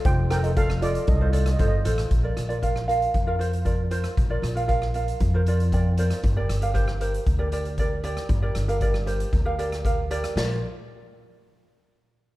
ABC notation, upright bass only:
X:1
M:4/4
L:1/8
Q:1/4=116
K:Bb
V:1 name="Upright bass" clef=bass
F,,,4 C,,2 G,,, A,,, | B,,, B,,,3 F,,4 | B,,, B,,,3 F,,4 | G,,, G,,,3 D,,4 |
G,,, G,,,3 D,,4 | B,,, z6 z |]